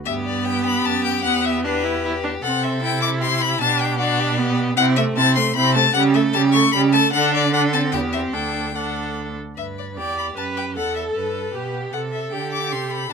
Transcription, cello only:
0.06 0.81 G2 medium
0.85 1.26 F#2 medium
1.25 2.43 E2 medium
2.44 3.58 C3 medium
3.61 4.75 B2 medium
4.77 5.12 C3 loud
5.16 5.51 C3 medium
5.55 5.90 C3 loud
5.95 6.30 C#3 loud
6.35 6.70 C#3 loud
6.75 7.09 C#3 loud
7.14 7.94 D3 loud
7.93 8.34 E2 medium
8.34 9.35 D2 medium
9.57 9.99 G2 medium
9.97 10.36 E2 medium
10.37 10.78 F#2 medium
10.77 11.16 E2 medium
11.16 11.54 G2 medium
11.55 11.93 B2 medium
11.94 12.32 C3 medium
12.33 12.73 D3 medium
12.72 13.11 C3 medium

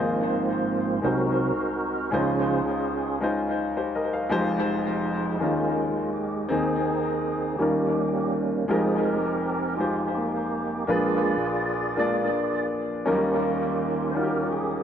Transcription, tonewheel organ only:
0.00 1.00 G#2 soft
0.00 0.99 F3 soft
0.00 1.00 A#3 medium
0.00 1.00 C4 medium
0.00 1.00 F4 medium
1.03 1.52 C3 soft
1.03 1.52 F#3 soft
1.03 1.53 C4 soft
1.03 2.10 D#4 medium
1.03 2.10 F#4 medium
1.03 2.16 A#4 medium
2.13 2.62 C#3 soft
2.13 2.62 F3 soft
2.13 3.19 C#4 medium
2.13 3.19 F4 soft
2.13 3.19 G#4 medium
2.13 2.63 C5 soft
4.31 5.37 F3 soft
4.31 5.38 G#3 soft
4.31 5.38 D#4 medium
5.35 5.42 E4 soft
5.41 5.90 D#3 soft
5.41 6.47 G#3 soft
5.41 5.90 C#4 soft
5.41 6.10 F4 medium
6.13 6.51 G4 medium
6.50 7.56 D#3 soft
6.50 7.57 C4 medium
6.50 7.57 D#4 medium
6.50 7.56 G#4 medium
7.58 8.65 D#3 soft
7.58 8.65 G3 soft
7.58 8.66 A#3 soft
7.58 8.66 C#4 soft
7.58 8.37 G4 medium
8.69 9.18 F3 soft
8.69 9.18 G#3 soft
8.69 9.75 C4 medium
8.69 9.05 D#4 medium
8.69 9.07 G#4 medium
9.05 10.12 D#4 soft
9.05 10.12 G4 soft
9.05 9.75 A#4 medium
9.77 10.15 F4 medium
10.14 10.85 A#3 soft
10.14 10.84 D#4 soft
10.14 10.90 G4 medium
10.88 11.37 A#2 soft
10.88 11.37 G#3 soft
10.88 11.37 D4 soft
10.88 12.67 F4 medium
10.88 12.67 G#4 medium
10.88 12.66 D5 medium
11.97 12.30 A#2 soft
11.97 12.30 G#3 soft
11.97 12.31 D4 soft
13.06 14.83 D#3 soft
13.06 14.12 A#3 soft
13.06 14.83 C#4 medium
13.06 14.12 F4 medium
13.06 14.83 G4 soft
14.09 14.16 C5 medium
14.16 14.50 A#4 medium
14.53 14.83 G#4 medium

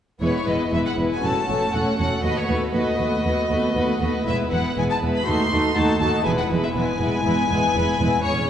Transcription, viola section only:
0.21 0.45 G#3 soft
0.21 0.46 B3 soft
0.46 0.71 G#3 soft
0.46 0.70 B3 soft
0.71 0.96 G#3 soft
0.71 0.96 B3 soft
0.97 1.23 G#3 soft
0.97 1.23 B3 soft
1.23 1.48 A3 soft
1.23 1.48 C#4 soft
1.49 1.73 A3 soft
1.49 1.74 C#4 soft
1.74 1.99 A3 soft
1.74 1.99 C#4 soft
2.00 2.25 A3 soft
2.00 2.24 C#4 soft
2.26 2.50 A3 soft
2.26 2.50 B3 soft
2.51 2.75 A3 soft
2.51 2.75 B3 soft
2.76 3.01 A3 soft
2.76 3.01 B3 soft
3.02 3.25 A3 soft
3.02 3.25 B3 soft
3.26 3.50 A3 soft
3.26 3.50 B3 soft
3.51 3.75 A3 soft
3.51 3.76 B3 soft
3.76 4.00 A3 soft
3.76 4.00 B3 soft
4.01 4.26 A3 soft
4.01 4.26 B3 soft
4.27 4.52 G#3 soft
4.27 4.52 B3 soft
4.53 4.76 G#3 soft
4.53 4.76 B3 soft
4.77 5.01 G#3 soft
4.77 5.02 B3 soft
5.03 5.27 G#3 soft
5.03 5.27 B3 soft
5.27 5.50 A3 soft
5.27 5.51 D#4 soft
5.51 5.75 A3 soft
5.51 5.76 D#4 soft
5.77 6.00 A3 soft
5.77 6.00 D#4 soft
6.01 6.25 A3 soft
6.01 6.25 D#4 soft
6.26 6.50 G#3 soft
6.26 6.50 B3 soft
6.51 6.74 G#3 soft
6.51 6.75 B3 soft
6.76 7.00 G#3 soft
6.76 6.99 B3 soft
7.00 7.24 G#3 soft
7.00 7.24 B3 soft
7.25 7.50 G#3 soft
7.25 7.50 B3 soft
7.51 7.74 G#3 soft
7.51 7.75 B3 soft
7.75 8.00 G#3 soft
7.75 8.00 B3 soft
8.01 8.24 G#3 soft
8.01 8.24 B3 soft
8.25 8.50 G#3 soft
8.25 8.50 B3 soft

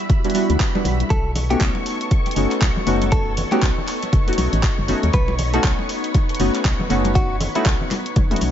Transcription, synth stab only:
0.24 0.32 G3 medium
0.24 0.33 B3 medium
0.24 0.33 D4 medium
0.24 0.33 E4 medium
0.24 0.33 F#4 medium
0.34 0.71 G3 medium
0.34 0.71 B3 medium
0.34 0.71 D4 medium
0.34 0.71 E4 medium
0.34 0.71 F#4 loud
0.74 1.09 G3 medium
0.74 1.09 B3 medium
0.74 1.09 D4 medium
0.74 1.09 E4 medium
0.74 1.09 F#4 medium
1.49 2.33 A3 medium
1.49 2.34 B3 medium
1.49 2.34 C#4 medium
1.49 2.34 D#4 medium
1.49 2.34 F#4 loud
2.36 2.84 A3 medium
2.36 2.84 B3 medium
2.36 2.84 C#4 medium
2.36 2.84 D#4 medium
2.36 2.84 F#4 loud
2.86 3.48 A3 loud
2.86 3.48 B3 medium
2.86 3.49 C#4 medium
2.86 3.49 D#4 medium
2.86 3.49 F#4 loud
3.52 3.64 A3 loud
3.52 3.64 B3 medium
3.52 3.64 C#4 medium
3.52 3.64 D#4 medium
3.52 3.64 F#4 loud
4.27 4.85 A3 medium
4.27 4.86 B3 medium
4.27 4.86 C#4 medium
4.27 4.86 D#4 medium
4.27 4.86 F#4 medium
4.88 5.04 A3 medium
4.88 5.04 B3 medium
4.88 5.05 C#4 medium
4.88 5.05 D#4 medium
4.88 5.05 F#4 medium
5.53 6.37 A3 medium
5.53 6.37 B3 medium
5.53 6.37 C#4 medium
5.53 6.37 D#4 medium
5.53 6.38 F#4 loud
6.39 6.87 A3 medium
6.39 6.88 B3 medium
6.39 6.88 C#4 medium
6.39 6.88 D#4 medium
6.39 6.88 F#4 loud
6.89 7.51 A3 loud
6.89 7.52 B3 medium
6.89 7.52 C#4 medium
6.89 7.52 D#4 loud
6.89 7.52 F#4 loud
7.55 7.67 A3 loud
7.55 7.67 B3 medium
7.55 7.68 C#4 medium
7.55 7.68 D#4 medium
7.55 7.68 F#4 loud
8.30 8.51 A3 medium
8.30 8.51 B3 medium
8.30 8.51 C#4 medium
8.30 8.51 D#4 medium
8.30 8.51 F#4 medium

